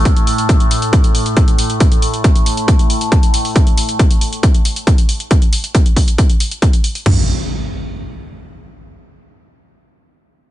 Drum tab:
CC |----------------|----------------|----------------|----------------|
HH |xxoxxxoxxxoxxxox|xxoxxxoxxxoxxxoo|xxoxxxoxxxoxxxox|xxoxxxoxxxoxxxoo|
FT |----------------|----------------|----------------|----------------|
BD |o---o---o---o---|o---o---o---o---|o---o---o---o---|o---o-o-o---o---|

CC |x---------------|----------------|
HH |----------------|----------------|
FT |o---------------|----------------|
BD |o---------------|----------------|